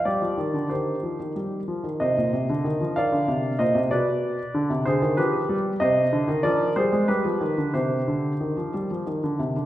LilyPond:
<<
  \new Staff \with { instrumentName = "Grand piano" } { \time 3/4 \key c \minor \tempo 4 = 94 <g' d''>4 <g' c''>4 r4 | <c'' ees''>4. <d'' f''>4 <c'' ees''>8 | <b' d''>4. <aes' c''>8 <g' b'>4 | <c'' ees''>4 <bes' d''>8 <aes' c''>8 <g' b'>4 |
<g' c''>2 r4 | }
  \new Staff \with { instrumentName = "Grand piano" } { \clef bass \time 3/4 \key c \minor g16 f16 ees16 d16 ees8 f16 ees16 g8 f16 ees16 | c16 bes,16 c16 d16 ees16 f16 ees16 d16 c8 bes,16 c16 | b,4 d16 c16 d16 ees16 f8 g8 | c8 d16 ees16 f8 g16 aes16 g16 f16 ees16 d16 |
c8 d8 ees16 f16 g16 f16 ees16 d16 c16 d16 | }
>>